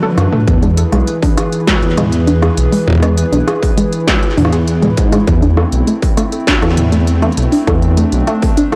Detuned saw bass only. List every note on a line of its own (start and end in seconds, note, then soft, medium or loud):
0.18 0.27 F#2 loud
0.48 0.84 E2 loud
0.92 1.02 B1 loud
1.83 2.49 E2 medium
2.58 2.67 B1 medium
2.88 3.24 E2 loud
3.32 3.42 B1 loud
4.38 4.89 E2 medium
4.98 5.17 G#2 medium
5.27 5.64 E2 medium
5.73 5.82 B1 loud
6.63 7.29 E2 medium
7.37 7.47 B1 medium
7.68 8.04 E2 loud
8.12 8.22 B1 loud